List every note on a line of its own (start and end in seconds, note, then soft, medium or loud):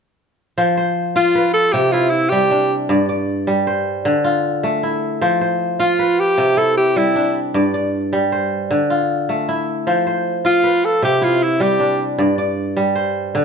0.58 1.79 F3 medium
0.58 0.77 C5 medium
0.77 1.41 C5 medium
1.16 2.00 F4 medium
1.16 1.52 F4 medium
1.35 2.58 B4 medium
1.54 1.74 A4 medium
1.72 2.95 C3 medium
1.72 1.93 G4 medium
1.92 3.50 E4 medium
1.92 2.11 F4 medium
2.10 2.31 E4 medium
2.29 2.95 G3 medium
2.29 2.74 G4 medium
2.51 4.19 D4 medium
2.89 4.11 G2 medium
2.89 3.08 D5 medium
3.09 4.20 D5 medium
3.47 4.11 G3 medium
3.67 4.86 C5 medium
4.05 5.27 D3 medium
4.24 4.89 F4 medium
4.63 6.63 A3 medium
4.83 5.86 E4 medium
5.21 6.43 F3 medium
5.21 5.41 C5 medium
5.41 6.05 C5 medium
5.80 6.63 F4 medium
5.80 6.21 F4 medium
5.99 7.22 B4 medium
6.19 6.59 G4 medium
6.38 7.59 C3 medium
6.57 8.14 E4 medium
6.57 6.77 A4 medium
6.77 6.99 G4 medium
6.96 7.59 G3 medium
6.96 7.40 E4 medium
7.15 8.83 D4 medium
7.54 8.75 G2 medium
7.54 7.74 D5 medium
7.74 8.85 D5 medium
8.13 8.75 G3 medium
8.32 9.51 C5 medium
8.71 9.92 D3 medium
8.90 9.55 F4 medium
9.29 11.29 A3 medium
9.49 10.51 E4 medium
9.87 11.08 F3 medium
9.87 10.06 C5 medium
10.07 10.70 C5 medium
10.45 11.28 F4 medium
10.45 10.87 F4 medium
10.64 11.87 B4 medium
10.85 11.04 A4 medium
11.02 12.24 C3 medium
11.02 11.25 G4 medium
11.22 12.78 E4 medium
11.22 11.45 F4 medium
11.43 11.64 E4 medium
11.60 12.24 G3 medium
11.60 12.05 G4 medium
11.80 13.45 D4 medium
12.18 13.41 G2 medium
12.18 12.38 D5 medium
12.38 13.45 D5 medium
12.77 13.41 G3 medium
12.95 13.45 C5 medium
13.35 13.45 D3 medium